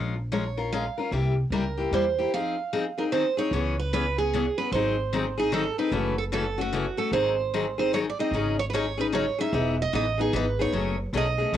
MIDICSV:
0, 0, Header, 1, 4, 480
1, 0, Start_track
1, 0, Key_signature, -4, "minor"
1, 0, Tempo, 400802
1, 1333, Time_signature, 3, 2, 24, 8
1, 4213, Key_signature, 4, "minor"
1, 13857, End_track
2, 0, Start_track
2, 0, Title_t, "Steel-string acoustic guitar"
2, 0, Program_c, 0, 25
2, 392, Note_on_c, 0, 73, 63
2, 829, Note_off_c, 0, 73, 0
2, 869, Note_on_c, 0, 77, 80
2, 1308, Note_off_c, 0, 77, 0
2, 1822, Note_on_c, 0, 70, 65
2, 2311, Note_off_c, 0, 70, 0
2, 2322, Note_on_c, 0, 72, 69
2, 2755, Note_off_c, 0, 72, 0
2, 2800, Note_on_c, 0, 77, 80
2, 3573, Note_on_c, 0, 70, 60
2, 3633, Note_off_c, 0, 70, 0
2, 3699, Note_off_c, 0, 77, 0
2, 3737, Note_on_c, 0, 72, 66
2, 4020, Note_off_c, 0, 72, 0
2, 4054, Note_on_c, 0, 73, 68
2, 4540, Note_off_c, 0, 73, 0
2, 4545, Note_on_c, 0, 71, 67
2, 4694, Note_off_c, 0, 71, 0
2, 4711, Note_on_c, 0, 71, 73
2, 4988, Note_off_c, 0, 71, 0
2, 5010, Note_on_c, 0, 68, 68
2, 5482, Note_on_c, 0, 71, 72
2, 5499, Note_off_c, 0, 68, 0
2, 5652, Note_off_c, 0, 71, 0
2, 5657, Note_on_c, 0, 72, 83
2, 6455, Note_off_c, 0, 72, 0
2, 6460, Note_on_c, 0, 68, 71
2, 6611, Note_off_c, 0, 68, 0
2, 6630, Note_on_c, 0, 69, 78
2, 6927, Note_off_c, 0, 69, 0
2, 6932, Note_on_c, 0, 71, 75
2, 7372, Note_off_c, 0, 71, 0
2, 7406, Note_on_c, 0, 69, 73
2, 7465, Note_off_c, 0, 69, 0
2, 7586, Note_on_c, 0, 69, 79
2, 7894, Note_off_c, 0, 69, 0
2, 7918, Note_on_c, 0, 66, 79
2, 8346, Note_off_c, 0, 66, 0
2, 8360, Note_on_c, 0, 69, 70
2, 8521, Note_off_c, 0, 69, 0
2, 8539, Note_on_c, 0, 72, 87
2, 9319, Note_off_c, 0, 72, 0
2, 9333, Note_on_c, 0, 72, 77
2, 9504, Note_off_c, 0, 72, 0
2, 9509, Note_on_c, 0, 73, 89
2, 9569, Note_off_c, 0, 73, 0
2, 9696, Note_on_c, 0, 74, 68
2, 9800, Note_off_c, 0, 74, 0
2, 9823, Note_on_c, 0, 75, 85
2, 10257, Note_off_c, 0, 75, 0
2, 10292, Note_on_c, 0, 73, 81
2, 10347, Note_off_c, 0, 73, 0
2, 10416, Note_on_c, 0, 71, 62
2, 10455, Note_off_c, 0, 71, 0
2, 10474, Note_on_c, 0, 73, 90
2, 10777, Note_off_c, 0, 73, 0
2, 10786, Note_on_c, 0, 71, 79
2, 10846, Note_off_c, 0, 71, 0
2, 10954, Note_on_c, 0, 73, 86
2, 11257, Note_off_c, 0, 73, 0
2, 11265, Note_on_c, 0, 76, 89
2, 11698, Note_off_c, 0, 76, 0
2, 11759, Note_on_c, 0, 75, 86
2, 11906, Note_off_c, 0, 75, 0
2, 11920, Note_on_c, 0, 75, 94
2, 12220, Note_off_c, 0, 75, 0
2, 12225, Note_on_c, 0, 68, 83
2, 12389, Note_off_c, 0, 68, 0
2, 12409, Note_on_c, 0, 71, 84
2, 12704, Note_off_c, 0, 71, 0
2, 12712, Note_on_c, 0, 73, 82
2, 13141, Note_off_c, 0, 73, 0
2, 13382, Note_on_c, 0, 75, 92
2, 13846, Note_off_c, 0, 75, 0
2, 13857, End_track
3, 0, Start_track
3, 0, Title_t, "Steel-string acoustic guitar"
3, 0, Program_c, 1, 25
3, 0, Note_on_c, 1, 53, 56
3, 0, Note_on_c, 1, 56, 55
3, 0, Note_on_c, 1, 61, 62
3, 0, Note_on_c, 1, 65, 61
3, 0, Note_on_c, 1, 70, 59
3, 157, Note_off_c, 1, 53, 0
3, 161, Note_off_c, 1, 56, 0
3, 162, Note_off_c, 1, 61, 0
3, 163, Note_off_c, 1, 65, 0
3, 165, Note_off_c, 1, 70, 0
3, 381, Note_on_c, 1, 53, 70
3, 382, Note_on_c, 1, 61, 76
3, 384, Note_on_c, 1, 56, 75
3, 389, Note_on_c, 1, 65, 67
3, 396, Note_on_c, 1, 70, 76
3, 514, Note_off_c, 1, 53, 0
3, 515, Note_off_c, 1, 61, 0
3, 516, Note_off_c, 1, 56, 0
3, 518, Note_off_c, 1, 65, 0
3, 522, Note_off_c, 1, 70, 0
3, 688, Note_on_c, 1, 70, 50
3, 692, Note_on_c, 1, 65, 49
3, 704, Note_on_c, 1, 61, 39
3, 850, Note_off_c, 1, 70, 0
3, 852, Note_off_c, 1, 65, 0
3, 858, Note_off_c, 1, 61, 0
3, 867, Note_on_c, 1, 56, 75
3, 871, Note_on_c, 1, 53, 70
3, 874, Note_on_c, 1, 61, 72
3, 876, Note_on_c, 1, 65, 78
3, 883, Note_on_c, 1, 70, 82
3, 998, Note_off_c, 1, 56, 0
3, 1000, Note_off_c, 1, 53, 0
3, 1001, Note_off_c, 1, 61, 0
3, 1002, Note_off_c, 1, 65, 0
3, 1006, Note_off_c, 1, 70, 0
3, 1169, Note_on_c, 1, 70, 50
3, 1185, Note_on_c, 1, 65, 42
3, 1191, Note_on_c, 1, 61, 37
3, 1331, Note_off_c, 1, 70, 0
3, 1339, Note_off_c, 1, 65, 0
3, 1342, Note_off_c, 1, 61, 0
3, 1343, Note_on_c, 1, 48, 58
3, 1346, Note_on_c, 1, 55, 54
3, 1350, Note_on_c, 1, 64, 57
3, 1353, Note_on_c, 1, 58, 55
3, 1355, Note_on_c, 1, 67, 62
3, 1598, Note_off_c, 1, 48, 0
3, 1600, Note_off_c, 1, 55, 0
3, 1601, Note_off_c, 1, 64, 0
3, 1603, Note_off_c, 1, 58, 0
3, 1604, Note_off_c, 1, 67, 0
3, 1824, Note_on_c, 1, 55, 73
3, 1827, Note_on_c, 1, 48, 69
3, 1831, Note_on_c, 1, 58, 71
3, 1837, Note_on_c, 1, 64, 71
3, 1838, Note_on_c, 1, 67, 78
3, 1956, Note_off_c, 1, 55, 0
3, 1957, Note_off_c, 1, 48, 0
3, 1960, Note_off_c, 1, 58, 0
3, 1963, Note_off_c, 1, 64, 0
3, 1963, Note_off_c, 1, 67, 0
3, 2126, Note_on_c, 1, 67, 48
3, 2137, Note_on_c, 1, 64, 44
3, 2150, Note_on_c, 1, 58, 43
3, 2289, Note_off_c, 1, 67, 0
3, 2295, Note_off_c, 1, 64, 0
3, 2302, Note_off_c, 1, 58, 0
3, 2307, Note_on_c, 1, 48, 77
3, 2309, Note_on_c, 1, 55, 83
3, 2316, Note_on_c, 1, 64, 75
3, 2318, Note_on_c, 1, 58, 74
3, 2321, Note_on_c, 1, 67, 81
3, 2438, Note_off_c, 1, 48, 0
3, 2439, Note_off_c, 1, 55, 0
3, 2442, Note_off_c, 1, 64, 0
3, 2443, Note_off_c, 1, 58, 0
3, 2445, Note_off_c, 1, 67, 0
3, 2619, Note_on_c, 1, 67, 53
3, 2625, Note_on_c, 1, 64, 40
3, 2631, Note_on_c, 1, 58, 42
3, 2776, Note_off_c, 1, 67, 0
3, 2779, Note_off_c, 1, 64, 0
3, 2782, Note_off_c, 1, 58, 0
3, 2803, Note_on_c, 1, 53, 60
3, 2804, Note_on_c, 1, 60, 58
3, 2808, Note_on_c, 1, 63, 58
3, 2811, Note_on_c, 1, 68, 62
3, 3048, Note_off_c, 1, 53, 0
3, 3049, Note_off_c, 1, 60, 0
3, 3051, Note_off_c, 1, 63, 0
3, 3052, Note_off_c, 1, 68, 0
3, 3267, Note_on_c, 1, 53, 62
3, 3268, Note_on_c, 1, 63, 69
3, 3270, Note_on_c, 1, 60, 69
3, 3270, Note_on_c, 1, 68, 81
3, 3398, Note_off_c, 1, 53, 0
3, 3398, Note_off_c, 1, 63, 0
3, 3399, Note_off_c, 1, 60, 0
3, 3399, Note_off_c, 1, 68, 0
3, 3564, Note_on_c, 1, 68, 48
3, 3577, Note_on_c, 1, 63, 46
3, 3585, Note_on_c, 1, 60, 39
3, 3728, Note_off_c, 1, 60, 0
3, 3728, Note_off_c, 1, 68, 0
3, 3732, Note_off_c, 1, 63, 0
3, 3735, Note_on_c, 1, 51, 61
3, 3740, Note_on_c, 1, 54, 71
3, 3742, Note_on_c, 1, 60, 70
3, 3744, Note_on_c, 1, 68, 82
3, 3747, Note_on_c, 1, 63, 78
3, 3872, Note_off_c, 1, 51, 0
3, 3874, Note_off_c, 1, 54, 0
3, 3875, Note_off_c, 1, 60, 0
3, 3876, Note_off_c, 1, 68, 0
3, 3878, Note_off_c, 1, 63, 0
3, 4036, Note_on_c, 1, 68, 44
3, 4048, Note_on_c, 1, 63, 41
3, 4050, Note_on_c, 1, 60, 39
3, 4204, Note_off_c, 1, 68, 0
3, 4210, Note_off_c, 1, 63, 0
3, 4211, Note_off_c, 1, 60, 0
3, 4224, Note_on_c, 1, 49, 58
3, 4225, Note_on_c, 1, 52, 61
3, 4228, Note_on_c, 1, 59, 68
3, 4234, Note_on_c, 1, 61, 70
3, 4235, Note_on_c, 1, 68, 71
3, 4479, Note_off_c, 1, 49, 0
3, 4479, Note_off_c, 1, 52, 0
3, 4480, Note_off_c, 1, 59, 0
3, 4484, Note_off_c, 1, 61, 0
3, 4484, Note_off_c, 1, 68, 0
3, 4706, Note_on_c, 1, 49, 81
3, 4706, Note_on_c, 1, 52, 76
3, 4711, Note_on_c, 1, 59, 76
3, 4717, Note_on_c, 1, 61, 84
3, 4719, Note_on_c, 1, 68, 86
3, 4837, Note_off_c, 1, 49, 0
3, 4837, Note_off_c, 1, 52, 0
3, 4840, Note_off_c, 1, 59, 0
3, 4843, Note_off_c, 1, 61, 0
3, 4844, Note_off_c, 1, 68, 0
3, 5007, Note_on_c, 1, 68, 52
3, 5020, Note_on_c, 1, 61, 48
3, 5025, Note_on_c, 1, 59, 46
3, 5170, Note_off_c, 1, 68, 0
3, 5176, Note_off_c, 1, 61, 0
3, 5179, Note_off_c, 1, 59, 0
3, 5191, Note_on_c, 1, 49, 83
3, 5201, Note_on_c, 1, 59, 75
3, 5201, Note_on_c, 1, 61, 87
3, 5202, Note_on_c, 1, 52, 79
3, 5202, Note_on_c, 1, 68, 88
3, 5320, Note_off_c, 1, 49, 0
3, 5325, Note_off_c, 1, 52, 0
3, 5325, Note_off_c, 1, 59, 0
3, 5325, Note_off_c, 1, 61, 0
3, 5325, Note_off_c, 1, 68, 0
3, 5482, Note_on_c, 1, 68, 54
3, 5496, Note_on_c, 1, 61, 47
3, 5512, Note_on_c, 1, 59, 42
3, 5647, Note_off_c, 1, 68, 0
3, 5654, Note_off_c, 1, 61, 0
3, 5662, Note_off_c, 1, 59, 0
3, 5676, Note_on_c, 1, 51, 66
3, 5679, Note_on_c, 1, 60, 63
3, 5682, Note_on_c, 1, 54, 62
3, 5688, Note_on_c, 1, 68, 68
3, 5690, Note_on_c, 1, 63, 71
3, 5925, Note_off_c, 1, 51, 0
3, 5926, Note_off_c, 1, 60, 0
3, 5927, Note_off_c, 1, 54, 0
3, 5931, Note_off_c, 1, 63, 0
3, 5931, Note_off_c, 1, 68, 0
3, 6139, Note_on_c, 1, 51, 70
3, 6143, Note_on_c, 1, 54, 82
3, 6148, Note_on_c, 1, 60, 78
3, 6153, Note_on_c, 1, 63, 83
3, 6158, Note_on_c, 1, 68, 90
3, 6274, Note_off_c, 1, 51, 0
3, 6275, Note_off_c, 1, 54, 0
3, 6278, Note_off_c, 1, 60, 0
3, 6280, Note_off_c, 1, 63, 0
3, 6283, Note_off_c, 1, 68, 0
3, 6438, Note_on_c, 1, 68, 55
3, 6447, Note_on_c, 1, 63, 52
3, 6462, Note_on_c, 1, 60, 42
3, 6599, Note_off_c, 1, 60, 0
3, 6605, Note_off_c, 1, 63, 0
3, 6605, Note_off_c, 1, 68, 0
3, 6610, Note_on_c, 1, 54, 87
3, 6611, Note_on_c, 1, 51, 83
3, 6614, Note_on_c, 1, 60, 86
3, 6619, Note_on_c, 1, 63, 84
3, 6622, Note_on_c, 1, 68, 89
3, 6749, Note_off_c, 1, 51, 0
3, 6749, Note_off_c, 1, 54, 0
3, 6751, Note_off_c, 1, 60, 0
3, 6753, Note_off_c, 1, 63, 0
3, 6755, Note_off_c, 1, 68, 0
3, 6925, Note_on_c, 1, 68, 51
3, 6928, Note_on_c, 1, 63, 50
3, 6940, Note_on_c, 1, 60, 47
3, 7087, Note_on_c, 1, 49, 62
3, 7088, Note_off_c, 1, 68, 0
3, 7090, Note_off_c, 1, 60, 0
3, 7090, Note_off_c, 1, 63, 0
3, 7094, Note_on_c, 1, 52, 63
3, 7094, Note_on_c, 1, 57, 68
3, 7095, Note_on_c, 1, 61, 72
3, 7104, Note_on_c, 1, 66, 67
3, 7349, Note_off_c, 1, 49, 0
3, 7353, Note_off_c, 1, 52, 0
3, 7353, Note_off_c, 1, 57, 0
3, 7353, Note_off_c, 1, 61, 0
3, 7358, Note_off_c, 1, 66, 0
3, 7569, Note_on_c, 1, 49, 73
3, 7574, Note_on_c, 1, 52, 70
3, 7574, Note_on_c, 1, 57, 75
3, 7577, Note_on_c, 1, 66, 80
3, 7578, Note_on_c, 1, 61, 86
3, 7708, Note_off_c, 1, 49, 0
3, 7711, Note_off_c, 1, 52, 0
3, 7711, Note_off_c, 1, 57, 0
3, 7712, Note_off_c, 1, 66, 0
3, 7713, Note_off_c, 1, 61, 0
3, 7877, Note_on_c, 1, 66, 53
3, 7885, Note_on_c, 1, 61, 47
3, 7896, Note_on_c, 1, 57, 42
3, 8044, Note_off_c, 1, 57, 0
3, 8044, Note_off_c, 1, 66, 0
3, 8048, Note_off_c, 1, 61, 0
3, 8054, Note_on_c, 1, 49, 77
3, 8058, Note_on_c, 1, 52, 78
3, 8059, Note_on_c, 1, 57, 86
3, 8066, Note_on_c, 1, 61, 89
3, 8074, Note_on_c, 1, 66, 92
3, 8190, Note_off_c, 1, 49, 0
3, 8193, Note_off_c, 1, 52, 0
3, 8193, Note_off_c, 1, 57, 0
3, 8196, Note_off_c, 1, 61, 0
3, 8200, Note_off_c, 1, 66, 0
3, 8350, Note_on_c, 1, 66, 55
3, 8361, Note_on_c, 1, 61, 52
3, 8371, Note_on_c, 1, 57, 42
3, 8521, Note_off_c, 1, 66, 0
3, 8526, Note_off_c, 1, 61, 0
3, 8530, Note_off_c, 1, 57, 0
3, 8532, Note_on_c, 1, 51, 68
3, 8535, Note_on_c, 1, 54, 67
3, 8535, Note_on_c, 1, 60, 72
3, 8541, Note_on_c, 1, 63, 63
3, 8542, Note_on_c, 1, 68, 71
3, 8792, Note_off_c, 1, 51, 0
3, 8793, Note_off_c, 1, 60, 0
3, 8794, Note_off_c, 1, 54, 0
3, 8796, Note_off_c, 1, 63, 0
3, 8797, Note_off_c, 1, 68, 0
3, 9024, Note_on_c, 1, 51, 76
3, 9028, Note_on_c, 1, 54, 77
3, 9029, Note_on_c, 1, 63, 81
3, 9030, Note_on_c, 1, 60, 78
3, 9032, Note_on_c, 1, 68, 83
3, 9156, Note_off_c, 1, 51, 0
3, 9157, Note_off_c, 1, 54, 0
3, 9158, Note_off_c, 1, 60, 0
3, 9158, Note_off_c, 1, 63, 0
3, 9159, Note_off_c, 1, 68, 0
3, 9316, Note_on_c, 1, 68, 52
3, 9328, Note_on_c, 1, 63, 46
3, 9338, Note_on_c, 1, 60, 42
3, 9484, Note_off_c, 1, 68, 0
3, 9489, Note_off_c, 1, 63, 0
3, 9494, Note_off_c, 1, 60, 0
3, 9497, Note_on_c, 1, 51, 73
3, 9506, Note_on_c, 1, 54, 79
3, 9510, Note_on_c, 1, 60, 80
3, 9510, Note_on_c, 1, 68, 85
3, 9514, Note_on_c, 1, 63, 85
3, 9632, Note_off_c, 1, 51, 0
3, 9636, Note_off_c, 1, 54, 0
3, 9638, Note_off_c, 1, 60, 0
3, 9638, Note_off_c, 1, 68, 0
3, 9640, Note_off_c, 1, 63, 0
3, 9811, Note_on_c, 1, 68, 56
3, 9818, Note_on_c, 1, 63, 50
3, 9828, Note_on_c, 1, 60, 41
3, 9971, Note_off_c, 1, 68, 0
3, 9974, Note_off_c, 1, 63, 0
3, 9979, Note_off_c, 1, 60, 0
3, 9982, Note_on_c, 1, 54, 58
3, 9985, Note_on_c, 1, 49, 61
3, 9993, Note_on_c, 1, 61, 68
3, 9994, Note_on_c, 1, 68, 78
3, 9995, Note_on_c, 1, 63, 69
3, 10237, Note_off_c, 1, 54, 0
3, 10238, Note_off_c, 1, 49, 0
3, 10242, Note_off_c, 1, 61, 0
3, 10242, Note_off_c, 1, 68, 0
3, 10243, Note_off_c, 1, 63, 0
3, 10457, Note_on_c, 1, 49, 64
3, 10461, Note_on_c, 1, 61, 82
3, 10468, Note_on_c, 1, 54, 74
3, 10468, Note_on_c, 1, 63, 82
3, 10471, Note_on_c, 1, 68, 86
3, 10591, Note_off_c, 1, 49, 0
3, 10593, Note_off_c, 1, 61, 0
3, 10597, Note_off_c, 1, 54, 0
3, 10597, Note_off_c, 1, 63, 0
3, 10599, Note_off_c, 1, 68, 0
3, 10749, Note_on_c, 1, 68, 57
3, 10763, Note_on_c, 1, 63, 51
3, 10771, Note_on_c, 1, 61, 46
3, 10920, Note_off_c, 1, 68, 0
3, 10922, Note_off_c, 1, 61, 0
3, 10922, Note_off_c, 1, 63, 0
3, 10927, Note_on_c, 1, 49, 82
3, 10931, Note_on_c, 1, 54, 79
3, 10935, Note_on_c, 1, 68, 86
3, 10936, Note_on_c, 1, 63, 86
3, 10937, Note_on_c, 1, 61, 81
3, 11066, Note_off_c, 1, 49, 0
3, 11068, Note_off_c, 1, 54, 0
3, 11070, Note_off_c, 1, 68, 0
3, 11071, Note_off_c, 1, 61, 0
3, 11071, Note_off_c, 1, 63, 0
3, 11239, Note_on_c, 1, 68, 51
3, 11257, Note_on_c, 1, 63, 51
3, 11264, Note_on_c, 1, 61, 41
3, 11404, Note_off_c, 1, 68, 0
3, 11407, Note_off_c, 1, 63, 0
3, 11413, Note_on_c, 1, 52, 60
3, 11417, Note_off_c, 1, 61, 0
3, 11421, Note_on_c, 1, 63, 73
3, 11424, Note_on_c, 1, 59, 68
3, 11427, Note_on_c, 1, 68, 76
3, 11671, Note_off_c, 1, 52, 0
3, 11676, Note_off_c, 1, 63, 0
3, 11677, Note_off_c, 1, 59, 0
3, 11679, Note_off_c, 1, 68, 0
3, 11893, Note_on_c, 1, 52, 82
3, 11896, Note_on_c, 1, 63, 81
3, 11897, Note_on_c, 1, 59, 89
3, 11901, Note_on_c, 1, 68, 89
3, 12029, Note_off_c, 1, 52, 0
3, 12031, Note_off_c, 1, 59, 0
3, 12031, Note_off_c, 1, 63, 0
3, 12033, Note_off_c, 1, 68, 0
3, 12190, Note_on_c, 1, 68, 50
3, 12206, Note_on_c, 1, 63, 52
3, 12208, Note_on_c, 1, 59, 44
3, 12359, Note_off_c, 1, 68, 0
3, 12361, Note_off_c, 1, 59, 0
3, 12367, Note_off_c, 1, 63, 0
3, 12374, Note_on_c, 1, 52, 87
3, 12376, Note_on_c, 1, 59, 93
3, 12385, Note_on_c, 1, 63, 87
3, 12387, Note_on_c, 1, 68, 84
3, 12509, Note_off_c, 1, 52, 0
3, 12510, Note_off_c, 1, 59, 0
3, 12515, Note_off_c, 1, 63, 0
3, 12516, Note_off_c, 1, 68, 0
3, 12685, Note_on_c, 1, 68, 58
3, 12698, Note_on_c, 1, 63, 44
3, 12700, Note_on_c, 1, 59, 42
3, 12846, Note_on_c, 1, 49, 66
3, 12847, Note_off_c, 1, 68, 0
3, 12851, Note_off_c, 1, 59, 0
3, 12851, Note_off_c, 1, 63, 0
3, 12855, Note_on_c, 1, 57, 67
3, 12856, Note_on_c, 1, 61, 68
3, 12858, Note_on_c, 1, 54, 70
3, 12864, Note_on_c, 1, 68, 71
3, 13108, Note_off_c, 1, 49, 0
3, 13112, Note_off_c, 1, 57, 0
3, 13112, Note_off_c, 1, 61, 0
3, 13114, Note_off_c, 1, 54, 0
3, 13117, Note_off_c, 1, 68, 0
3, 13335, Note_on_c, 1, 49, 77
3, 13338, Note_on_c, 1, 54, 84
3, 13340, Note_on_c, 1, 57, 79
3, 13348, Note_on_c, 1, 61, 84
3, 13352, Note_on_c, 1, 68, 98
3, 13469, Note_off_c, 1, 49, 0
3, 13471, Note_off_c, 1, 54, 0
3, 13472, Note_off_c, 1, 57, 0
3, 13476, Note_off_c, 1, 61, 0
3, 13478, Note_off_c, 1, 68, 0
3, 13629, Note_on_c, 1, 68, 52
3, 13645, Note_on_c, 1, 61, 49
3, 13653, Note_on_c, 1, 57, 47
3, 13798, Note_off_c, 1, 68, 0
3, 13804, Note_off_c, 1, 57, 0
3, 13806, Note_off_c, 1, 61, 0
3, 13815, Note_on_c, 1, 49, 85
3, 13819, Note_on_c, 1, 57, 86
3, 13857, Note_off_c, 1, 49, 0
3, 13857, Note_off_c, 1, 57, 0
3, 13857, End_track
4, 0, Start_track
4, 0, Title_t, "Upright bass"
4, 0, Program_c, 2, 32
4, 0, Note_on_c, 2, 34, 67
4, 1038, Note_off_c, 2, 34, 0
4, 1333, Note_on_c, 2, 36, 73
4, 1717, Note_off_c, 2, 36, 0
4, 1800, Note_on_c, 2, 37, 68
4, 2213, Note_off_c, 2, 37, 0
4, 2291, Note_on_c, 2, 40, 67
4, 2700, Note_off_c, 2, 40, 0
4, 4205, Note_on_c, 2, 37, 77
4, 5360, Note_off_c, 2, 37, 0
4, 5649, Note_on_c, 2, 32, 79
4, 6802, Note_off_c, 2, 32, 0
4, 7084, Note_on_c, 2, 30, 78
4, 8239, Note_off_c, 2, 30, 0
4, 8521, Note_on_c, 2, 32, 77
4, 9676, Note_off_c, 2, 32, 0
4, 9956, Note_on_c, 2, 32, 75
4, 11113, Note_off_c, 2, 32, 0
4, 11409, Note_on_c, 2, 28, 85
4, 11793, Note_off_c, 2, 28, 0
4, 11897, Note_on_c, 2, 33, 80
4, 12301, Note_off_c, 2, 33, 0
4, 12373, Note_on_c, 2, 32, 77
4, 12779, Note_off_c, 2, 32, 0
4, 12851, Note_on_c, 2, 30, 82
4, 13234, Note_off_c, 2, 30, 0
4, 13328, Note_on_c, 2, 35, 75
4, 13736, Note_off_c, 2, 35, 0
4, 13804, Note_on_c, 2, 33, 77
4, 13857, Note_off_c, 2, 33, 0
4, 13857, End_track
0, 0, End_of_file